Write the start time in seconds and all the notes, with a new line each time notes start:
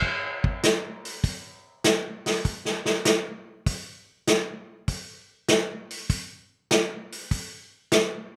0.02 kick
0.44 kick
0.63 snare, closed hi-hat
1.05 open hi-hat
1.24 kick, open hi-hat
1.84 snare, closed hi-hat
2.26 snare, open hi-hat
2.45 kick, open hi-hat
2.65 snare
2.85 snare
3.05 snare, closed hi-hat
3.66 kick, open hi-hat
4.27 snare, closed hi-hat
4.88 kick, open hi-hat
5.48 snare, closed hi-hat
5.91 open hi-hat
6.10 kick, open hi-hat
6.71 snare, closed hi-hat
7.12 open hi-hat
7.31 kick, open hi-hat
7.92 snare, closed hi-hat